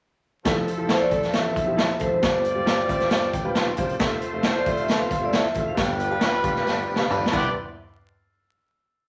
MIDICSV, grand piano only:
0, 0, Header, 1, 2, 480
1, 0, Start_track
1, 0, Tempo, 444115
1, 500, Time_signature, 4, 2, 24, 8
1, 9814, End_track
2, 0, Start_track
2, 0, Title_t, "Grand piano"
2, 0, Program_c, 0, 0
2, 483, Note_on_c, 0, 53, 81
2, 487, Note_on_c, 0, 64, 74
2, 492, Note_on_c, 0, 69, 92
2, 735, Note_off_c, 0, 53, 0
2, 737, Note_off_c, 0, 64, 0
2, 739, Note_off_c, 0, 69, 0
2, 839, Note_on_c, 0, 53, 70
2, 841, Note_on_c, 0, 64, 63
2, 848, Note_on_c, 0, 69, 70
2, 1092, Note_off_c, 0, 53, 0
2, 1093, Note_off_c, 0, 64, 0
2, 1096, Note_off_c, 0, 69, 0
2, 1186, Note_on_c, 0, 64, 60
2, 1190, Note_on_c, 0, 53, 67
2, 1203, Note_on_c, 0, 69, 76
2, 1363, Note_off_c, 0, 64, 0
2, 1365, Note_off_c, 0, 53, 0
2, 1372, Note_off_c, 0, 69, 0
2, 1436, Note_on_c, 0, 53, 72
2, 1436, Note_on_c, 0, 64, 62
2, 1446, Note_on_c, 0, 69, 74
2, 1689, Note_off_c, 0, 53, 0
2, 1689, Note_off_c, 0, 64, 0
2, 1694, Note_off_c, 0, 69, 0
2, 1796, Note_on_c, 0, 64, 63
2, 1798, Note_on_c, 0, 53, 70
2, 1802, Note_on_c, 0, 67, 82
2, 2047, Note_off_c, 0, 64, 0
2, 2048, Note_off_c, 0, 53, 0
2, 2051, Note_off_c, 0, 67, 0
2, 2151, Note_on_c, 0, 53, 72
2, 2161, Note_on_c, 0, 64, 65
2, 2162, Note_on_c, 0, 69, 75
2, 2323, Note_off_c, 0, 53, 0
2, 2328, Note_off_c, 0, 64, 0
2, 2329, Note_off_c, 0, 69, 0
2, 2397, Note_on_c, 0, 55, 67
2, 2397, Note_on_c, 0, 65, 60
2, 2404, Note_on_c, 0, 72, 72
2, 2646, Note_off_c, 0, 55, 0
2, 2646, Note_off_c, 0, 65, 0
2, 2650, Note_off_c, 0, 72, 0
2, 2756, Note_on_c, 0, 55, 85
2, 2760, Note_on_c, 0, 65, 71
2, 2766, Note_on_c, 0, 74, 89
2, 3005, Note_off_c, 0, 55, 0
2, 3007, Note_off_c, 0, 65, 0
2, 3010, Note_off_c, 0, 74, 0
2, 3102, Note_on_c, 0, 55, 83
2, 3107, Note_on_c, 0, 76, 64
2, 3120, Note_on_c, 0, 65, 77
2, 3123, Note_on_c, 0, 72, 89
2, 3276, Note_off_c, 0, 55, 0
2, 3285, Note_off_c, 0, 65, 0
2, 3287, Note_off_c, 0, 72, 0
2, 3338, Note_off_c, 0, 76, 0
2, 3356, Note_on_c, 0, 65, 78
2, 3357, Note_on_c, 0, 55, 83
2, 3357, Note_on_c, 0, 77, 73
2, 3366, Note_on_c, 0, 72, 98
2, 3583, Note_off_c, 0, 77, 0
2, 3604, Note_off_c, 0, 65, 0
2, 3605, Note_off_c, 0, 55, 0
2, 3609, Note_off_c, 0, 72, 0
2, 3609, Note_on_c, 0, 79, 62
2, 3724, Note_on_c, 0, 55, 88
2, 3724, Note_on_c, 0, 65, 83
2, 3732, Note_on_c, 0, 71, 98
2, 3829, Note_off_c, 0, 79, 0
2, 3852, Note_on_c, 0, 84, 72
2, 3968, Note_off_c, 0, 55, 0
2, 3968, Note_off_c, 0, 65, 0
2, 3971, Note_off_c, 0, 71, 0
2, 4086, Note_on_c, 0, 65, 77
2, 4087, Note_on_c, 0, 55, 85
2, 4105, Note_on_c, 0, 72, 96
2, 4247, Note_off_c, 0, 55, 0
2, 4247, Note_off_c, 0, 65, 0
2, 4256, Note_off_c, 0, 72, 0
2, 4293, Note_off_c, 0, 84, 0
2, 4328, Note_on_c, 0, 57, 81
2, 4337, Note_on_c, 0, 65, 75
2, 4340, Note_on_c, 0, 76, 91
2, 4569, Note_off_c, 0, 57, 0
2, 4573, Note_off_c, 0, 65, 0
2, 4575, Note_off_c, 0, 76, 0
2, 4677, Note_on_c, 0, 57, 68
2, 4689, Note_on_c, 0, 65, 63
2, 4692, Note_on_c, 0, 76, 78
2, 4924, Note_off_c, 0, 57, 0
2, 4930, Note_off_c, 0, 65, 0
2, 4931, Note_off_c, 0, 76, 0
2, 5046, Note_on_c, 0, 57, 69
2, 5053, Note_on_c, 0, 65, 65
2, 5056, Note_on_c, 0, 76, 75
2, 5207, Note_off_c, 0, 57, 0
2, 5210, Note_off_c, 0, 65, 0
2, 5211, Note_off_c, 0, 76, 0
2, 5291, Note_on_c, 0, 57, 74
2, 5302, Note_on_c, 0, 65, 66
2, 5302, Note_on_c, 0, 71, 84
2, 5531, Note_off_c, 0, 57, 0
2, 5536, Note_off_c, 0, 65, 0
2, 5537, Note_off_c, 0, 71, 0
2, 5636, Note_on_c, 0, 57, 75
2, 5650, Note_on_c, 0, 65, 65
2, 5650, Note_on_c, 0, 76, 78
2, 5884, Note_off_c, 0, 57, 0
2, 5891, Note_off_c, 0, 65, 0
2, 5891, Note_off_c, 0, 76, 0
2, 6002, Note_on_c, 0, 57, 76
2, 6006, Note_on_c, 0, 65, 64
2, 6013, Note_on_c, 0, 76, 79
2, 6165, Note_off_c, 0, 57, 0
2, 6168, Note_off_c, 0, 65, 0
2, 6171, Note_off_c, 0, 76, 0
2, 6217, Note_on_c, 0, 59, 69
2, 6219, Note_on_c, 0, 67, 66
2, 6231, Note_on_c, 0, 77, 79
2, 6475, Note_off_c, 0, 59, 0
2, 6476, Note_off_c, 0, 67, 0
2, 6482, Note_off_c, 0, 77, 0
2, 6595, Note_on_c, 0, 59, 70
2, 6597, Note_on_c, 0, 67, 64
2, 6603, Note_on_c, 0, 77, 79
2, 6845, Note_off_c, 0, 59, 0
2, 6846, Note_off_c, 0, 67, 0
2, 6849, Note_off_c, 0, 77, 0
2, 6943, Note_on_c, 0, 59, 67
2, 6950, Note_on_c, 0, 67, 61
2, 6960, Note_on_c, 0, 77, 79
2, 7118, Note_off_c, 0, 59, 0
2, 7122, Note_off_c, 0, 67, 0
2, 7127, Note_off_c, 0, 77, 0
2, 7182, Note_on_c, 0, 59, 75
2, 7183, Note_on_c, 0, 67, 66
2, 7195, Note_on_c, 0, 74, 82
2, 7440, Note_off_c, 0, 59, 0
2, 7441, Note_off_c, 0, 67, 0
2, 7447, Note_off_c, 0, 74, 0
2, 7543, Note_on_c, 0, 59, 89
2, 7555, Note_on_c, 0, 67, 85
2, 7556, Note_on_c, 0, 77, 94
2, 7802, Note_off_c, 0, 59, 0
2, 7808, Note_off_c, 0, 67, 0
2, 7808, Note_off_c, 0, 77, 0
2, 7901, Note_on_c, 0, 59, 84
2, 7901, Note_on_c, 0, 74, 90
2, 7905, Note_on_c, 0, 64, 75
2, 8140, Note_off_c, 0, 59, 0
2, 8140, Note_off_c, 0, 74, 0
2, 8142, Note_off_c, 0, 64, 0
2, 9814, End_track
0, 0, End_of_file